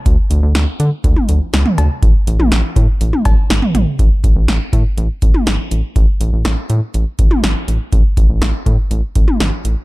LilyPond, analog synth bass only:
\new Staff \with { instrumentName = "Analog synth bass" } { \clef bass \time 4/4 \key a \major \tempo 4 = 122 d,16 r16 d,16 d,16 d,16 r16 d16 r16 d,16 r16 d,16 r16 cis,16 r16 d,16 r16 | a,,16 r16 a,,16 a,,16 a,,16 r16 a,16 r16 a,,16 r16 a,,16 r16 gis,,16 r16 a,,16 r16 | a,,16 r16 a,,16 a,,16 a,,16 r16 a,16 r16 a,,16 r16 a,,16 r16 gis,,16 r16 a,,16 r16 | a,,16 r16 a,,16 a,,16 a,,16 r16 a,16 r16 a,,16 r16 a,,16 r16 gis,,16 r16 a,,16 r16 |
a,,16 r16 a,,16 a,,16 a,,16 r16 a,16 r16 a,,16 r16 a,,16 r16 gis,,16 r16 a,,16 r16 | }